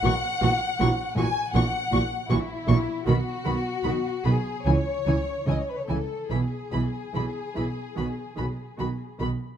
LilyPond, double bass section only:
\new Staff \with { instrumentName = "Double bass section" } { \clef bass \time 4/4 \key b \mixolydian \tempo 4 = 74 ais,,8 ais,,8 ais,,8 ais,,8 ais,,8 ais,,8 ais,,8 ais,,8 | b,,8 b,,8 b,,8 b,,8 cis,8 cis,8 cis,8 cis,8 | b,,8 b,,8 b,,8 b,,8 b,,8 b,,8 b,,8 b,,8 | }